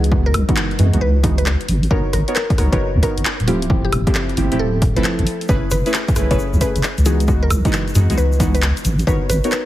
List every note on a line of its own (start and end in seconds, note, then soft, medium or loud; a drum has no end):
0.00 0.31 C#2 medium
0.04 closed hi-hat medium
0.12 0.26 E3 medium
0.12 0.26 G#3 medium
0.12 0.26 B3 medium
0.12 0.26 D#4 medium
0.12 0.26 F#4 medium
0.12 kick loud
0.26 0.42 A#4 medium
0.34 0.45 C#2 loud
0.34 cross-stick medium
0.34 open hi-hat loud
0.34 high woodblock medium
0.49 0.54 E3 loud
0.49 0.54 G#3 medium
0.49 0.54 B3 medium
0.49 0.54 D#4 medium
0.49 0.54 F#4 loud
0.49 kick loud
0.49 closed hi-hat medium
0.56 clap loud
0.71 closed hi-hat soft
0.79 0.90 F#2 medium
0.79 0.90 E3 medium
0.79 0.90 G#3 medium
0.79 0.90 B3 medium
0.79 0.90 D#4 medium
0.79 0.90 F#4 medium
0.79 open hi-hat loud
0.93 0.99 C#2 medium
0.93 1.01 E3 medium
0.93 1.01 G#3 medium
0.93 1.01 B3 medium
0.93 1.01 D#4 medium
0.93 1.01 F#4 medium
0.93 closed hi-hat medium
1.01 1.55 C#2 loud
1.01 1.20 B4 medium
1.24 1.33 E3 loud
1.24 1.33 G#3 medium
1.24 1.33 B3 medium
1.24 1.33 D#4 medium
1.24 1.33 F#4 loud
1.24 kick loud
1.24 open hi-hat loud
1.38 1.54 B4 medium
1.38 closed hi-hat medium
1.46 clap loud
1.61 closed hi-hat soft
1.68 1.87 G#1 loud
1.68 open hi-hat loud
1.83 open hi-hat medium
1.91 2.02 G#1 loud
1.91 2.00 B3 medium
1.91 2.00 D#4 medium
1.91 2.00 F#4 medium
1.91 2.06 A#4 loud
1.91 2.00 A#4 medium
1.91 2.00 C#5 loud
1.91 kick loud
2.13 2.24 G#1 loud
2.13 2.28 A#4 medium
2.13 cross-stick medium
2.13 open hi-hat loud
2.28 2.33 B3 medium
2.28 2.33 D#4 medium
2.28 2.33 F#4 medium
2.28 2.33 A#4 medium
2.28 2.33 C#5 loud
2.28 closed hi-hat medium
2.35 2.54 A#4 medium
2.35 clap loud
2.50 kick loud
2.50 open hi-hat medium
2.58 2.69 C#2 medium
2.58 2.67 B3 medium
2.58 2.67 D#4 medium
2.58 2.67 F#4 medium
2.58 2.67 A#4 medium
2.58 2.67 C#5 medium
2.58 cross-stick medium
2.58 open hi-hat loud
2.72 2.78 G#1 medium
2.72 2.77 B3 loud
2.72 2.77 D#4 medium
2.72 2.77 F#4 medium
2.72 2.77 A#4 medium
2.72 2.88 B4 loud
2.72 2.77 C#5 loud
2.72 kick loud
2.72 closed hi-hat medium
2.95 3.01 D#2 loud
3.03 3.12 B3 medium
3.03 3.12 D#4 medium
3.03 3.12 F#4 medium
3.03 3.26 A#4 loud
3.03 3.12 A#4 medium
3.03 3.12 C#5 medium
3.03 kick medium
3.03 open hi-hat loud
3.18 3.23 G#1 loud
3.18 closed hi-hat medium
3.25 clap loud
3.40 3.89 D1 medium
3.40 closed hi-hat soft
3.47 3.57 F3 medium
3.47 3.57 A3 medium
3.47 3.57 C4 medium
3.47 3.57 E4 medium
3.47 3.66 F4 medium
3.47 3.57 G4 loud
3.47 open hi-hat loud
3.62 closed hi-hat medium
3.70 3.85 F3 medium
3.70 3.85 A3 medium
3.70 3.85 C4 medium
3.70 3.85 E4 medium
3.70 3.85 G4 medium
3.70 kick loud
3.85 4.00 G4 medium
3.92 4.03 D1 loud
3.92 cross-stick medium
3.92 open hi-hat loud
3.92 high woodblock medium
4.07 4.12 F3 loud
4.07 4.12 A3 medium
4.07 4.12 C4 medium
4.07 4.12 E4 medium
4.07 4.12 G4 loud
4.07 kick loud
4.07 closed hi-hat medium
4.15 clap loud
4.29 closed hi-hat soft
4.37 4.48 G1 medium
4.37 4.48 F3 medium
4.37 4.48 A3 medium
4.37 4.48 C4 medium
4.37 4.48 E4 medium
4.37 4.48 G4 medium
4.37 open hi-hat loud
4.52 4.58 D1 medium
4.52 4.60 F3 medium
4.52 4.60 A3 medium
4.52 4.60 C4 medium
4.52 4.60 E4 medium
4.52 4.60 G4 loud
4.52 closed hi-hat medium
4.59 4.96 D1 loud
4.59 4.78 A4 medium
4.82 kick loud
4.82 open hi-hat loud
4.96 5.02 G1 medium
4.96 5.47 F3 loud
4.96 5.47 A3 medium
4.96 5.47 C4 medium
4.96 5.47 E4 medium
4.96 5.47 A4 loud
4.96 5.12 B4 medium
4.96 closed hi-hat medium
5.04 clap loud
5.19 5.25 A1 loud
5.19 closed hi-hat medium
5.27 open hi-hat loud
5.41 open hi-hat medium
5.48 5.60 F#1 loud
5.48 5.58 A3 medium
5.48 5.58 C#4 medium
5.48 5.58 E4 medium
5.48 5.58 G#4 medium
5.48 5.64 B4 loud
5.48 5.58 B4 loud
5.48 kick loud
5.48 shaker soft
5.71 5.82 F#1 loud
5.71 5.86 B4 medium
5.71 cross-stick soft
5.71 open hi-hat loud
5.71 shaker loud
5.86 5.91 A3 medium
5.86 5.91 C#4 medium
5.86 5.91 E4 medium
5.86 5.91 G#4 medium
5.86 5.91 B4 loud
5.86 closed hi-hat medium
5.86 shaker soft
5.94 6.13 B4 medium
5.94 clap loud
5.94 shaker soft
6.08 kick loud
6.08 open hi-hat medium
6.08 shaker soft
6.16 6.27 B1 medium
6.16 6.25 A3 medium
6.16 6.25 C#4 medium
6.16 6.25 E4 medium
6.16 6.25 G#4 medium
6.16 6.25 B4 medium
6.16 cross-stick medium
6.16 open hi-hat loud
6.16 shaker medium
6.31 6.37 F#1 medium
6.31 6.36 A3 loud
6.31 6.36 C#4 medium
6.31 6.36 E4 medium
6.31 6.36 G#4 medium
6.31 6.36 B4 loud
6.31 6.46 C#5 loud
6.31 kick loud
6.31 closed hi-hat medium
6.31 shaker soft
6.39 shaker soft
6.53 6.59 C#2 loud
6.53 shaker soft
6.61 6.70 A3 medium
6.61 6.70 C#4 medium
6.61 6.70 E4 medium
6.61 6.70 G#4 medium
6.61 6.70 B4 loud
6.61 6.84 B4 medium
6.61 kick medium
6.61 open hi-hat loud
6.61 shaker medium
6.76 6.81 F#1 loud
6.76 closed hi-hat medium
6.76 shaker soft
6.83 clap loud
6.83 shaker medium
6.98 7.47 C#2 medium
6.98 closed hi-hat medium
6.98 shaker soft
7.06 7.15 E3 loud
7.06 7.15 G#3 medium
7.06 7.15 B3 medium
7.06 7.15 D#4 medium
7.06 7.15 F#4 loud
7.06 7.25 G#4 medium
7.06 open hi-hat loud
7.06 shaker loud
7.20 closed hi-hat medium
7.20 shaker soft
7.28 7.43 E3 medium
7.28 7.43 G#3 medium
7.28 7.43 B3 medium
7.28 7.43 D#4 medium
7.28 7.43 F#4 medium
7.28 kick loud
7.28 shaker medium
7.43 7.58 A#4 medium
7.50 7.61 C#2 loud
7.50 cross-stick soft
7.50 open hi-hat loud
7.50 high woodblock medium
7.50 shaker medium
7.65 7.70 E3 loud
7.65 7.70 G#3 medium
7.65 7.70 B3 medium
7.65 7.70 D#4 medium
7.65 7.70 F#4 loud
7.65 kick loud
7.65 closed hi-hat medium
7.65 shaker soft
7.73 clap loud
7.73 shaker soft
7.88 closed hi-hat soft
7.88 shaker soft
7.95 8.06 F#2 medium
7.95 8.06 E3 medium
7.95 8.06 G#3 medium
7.95 8.06 B3 medium
7.95 8.06 D#4 medium
7.95 8.06 F#4 medium
7.95 open hi-hat loud
7.95 shaker medium
8.10 8.16 C#2 medium
8.10 8.18 E3 medium
8.10 8.18 G#3 medium
8.10 8.18 B3 medium
8.10 8.18 D#4 medium
8.10 8.18 F#4 medium
8.10 closed hi-hat medium
8.10 shaker soft
8.18 8.71 C#2 loud
8.18 8.36 B4 medium
8.18 shaker medium
8.32 shaker soft
8.40 8.49 E3 loud
8.40 8.49 G#3 medium
8.40 8.49 B3 medium
8.40 8.49 D#4 medium
8.40 8.49 F#4 loud
8.40 kick loud
8.40 open hi-hat loud
8.40 shaker medium
8.54 8.70 B4 medium
8.54 closed hi-hat medium
8.54 shaker soft
8.62 clap loud
8.62 shaker medium
8.77 closed hi-hat medium
8.77 shaker soft
8.85 9.03 G#1 loud
8.85 open hi-hat loud
8.85 shaker medium
8.99 open hi-hat medium
8.99 shaker soft
9.07 9.18 G#1 loud
9.07 9.16 B3 medium
9.07 9.16 D#4 medium
9.07 9.16 F#4 medium
9.07 9.16 A#4 medium
9.07 9.22 B4 loud
9.07 9.16 C#5 loud
9.07 kick loud
9.07 shaker soft
9.29 9.41 G#1 loud
9.29 9.44 B4 medium
9.29 cross-stick medium
9.29 open hi-hat loud
9.29 shaker medium
9.44 9.49 B3 medium
9.44 9.49 D#4 medium
9.44 9.49 F#4 medium
9.44 9.49 A#4 medium
9.44 9.49 C#5 loud
9.44 closed hi-hat medium
9.44 shaker soft
9.52 9.65 B4 loud
9.52 clap loud
9.52 shaker soft